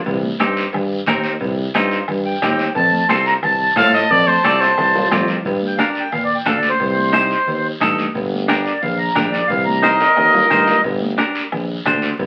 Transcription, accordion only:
2.25 G5
2.76 A5
3.09 C6
3.27 A#5
3.44 A5
5.67 G5
5.78 F5
5.89 D5
6.00 G5
6.12 F5
6.24 D5
6.35 G5
6.48 F5
6.57 D5
6.69 C5
8.49 G5
8.65 D5
8.82 F5
8.98 A#5
9.15 G5
9.31 D5
9.48 F5
9.65 A#5
9.82 A#4 D#5

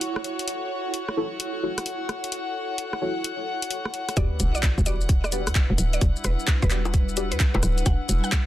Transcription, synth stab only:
1.17 E4 F#4 A4 C#5
1.63 E4 F#4 A4 C#5
3.01 E4 F#4 A4 C#5
4.17 F#4 G4 B4 D5
4.86 F#4 G4 B4 D5
5.32 F#4 G4 B4 D5
6.71 F#4 G4 B4 D5
7.17 F#4 G4 B4 D5

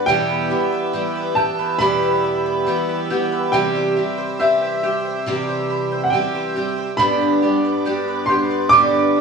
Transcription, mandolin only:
Already playing: D4 B4 G5
0.08 G3
0.30 B4
0.51 E4
0.72 B4
0.93 G5
1.16 B4
1.37 G5
1.59 B4
1.81 G3
2.03 B4
2.24 E4
2.46 B4
2.68 G5
2.89 B4
3.10 G5
3.32 B4
3.54 G3
3.75 C5
3.97 E4
4.18 C5
4.40 G5
4.61 C5
4.84 G5
5.05 C5
5.27 G3
5.49 C5
5.70 E4
5.92 C5
6.13 G5
6.35 C5
6.56 G5
6.78 C5
7.00 G3
7.21 B4
7.42 D4
7.65 B4
7.86 G5
8.08 B4
8.29 G5
8.51 B4
8.73 G3
8.94 B4
9.16 D4

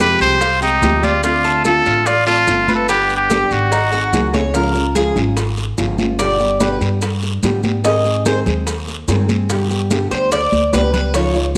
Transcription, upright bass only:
Already playing: F2
0.20 C2
0.83 D2
1.86 A1
2.48 G1
3.51 G#1
4.13 C#2
5.16 G#1
5.78 G1
6.81 G2
7.43 G#2
8.46 D#2
9.08 G2
10.11 D2
10.52 D2
10.73 C#2

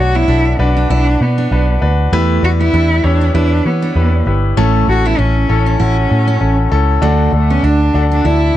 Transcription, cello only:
0.00 F#4
0.16 E4
0.60 D4
0.92 D4
1.22 B3
2.44 F#4
2.61 E4
3.05 D4
3.36 D4
3.67 B3
4.89 F#4
5.06 E4
5.20 C#4
5.81 C#4
7.34 A3
7.51 C#4
7.64 D4
8.12 D4
8.26 E4

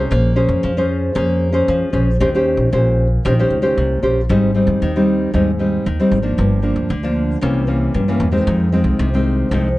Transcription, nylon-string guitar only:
Already playing: C#4 G#4 C5
0.11 A#3
0.36 C#4 G#4 C5
0.63 F3
0.77 C#4 G#4 C5
1.15 A#3 C#4 G#4 C5
1.53 C#4 G#4 C5
1.68 F3
1.93 C#4 G#4 C5
2.20 D#3 C#4 G4 C5
2.35 C#4 G4 C5
2.73 A#2 C#4 G4 C5
3.25 D#3 C#4 G4 C5
3.39 C#4 G4 C5
3.62 C#4 G4 C5
3.78 A#2
4.03 C#4 G4 C5
4.29 G#2 G3 C4 D#4
4.54 G3 C4 D#4
4.82 D#3
4.96 G3 C4 D#4
5.34 G#2 G3 C4 D#4
5.59 G3 C4 D#4
5.86 D#3
6.00 G3 C4 D#4
6.22 F3 A#3 D4
6.38 G2
6.62 F3 A#3 D4
6.90 D3
7.03 F3 A#3 D4
7.41 C3 E3 A#3 C#4
7.67 E3 A#3 C#4
7.94 G2
8.08 E3 A#3 C#4
8.32 D#3 G#3 C4
8.47 F2
8.72 D#3 G#3 C4
8.99 C3
9.14 D#3 G#3 C4
9.52 F2 D#3 G#3 C4

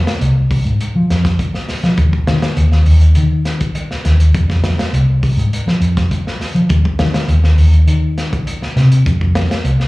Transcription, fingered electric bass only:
0.07 muted fingered electric bass stroke
0.21 C2
0.65 G#2
0.96 F3
1.10 F2
1.69 muted fingered electric bass stroke
1.83 F3
1.98 D#2
2.27 D#3
2.57 D#2
2.86 D#2
3.17 D#3
3.91 muted fingered electric bass stroke
4.05 D#2
4.35 F2
4.50 F2
4.79 muted fingered electric bass stroke
4.93 C2
5.37 G#2
5.67 F3
5.81 F2
6.40 muted fingered electric bass stroke
6.55 F3
6.70 D#2
6.86 muted fingered electric bass stroke
6.99 D#3
7.28 D#2
7.58 D#2
7.87 D#3
8.62 muted fingered electric bass stroke
8.76 C3
9.06 F2
9.21 F2
9.50 muted fingered electric bass stroke
9.64 C2

